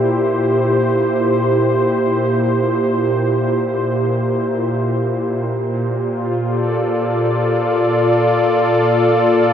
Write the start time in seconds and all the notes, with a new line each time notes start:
Already playing: A#2 A#3 E4 G4 C5
5.47 A#2
5.99 F4
6.38 A4 D5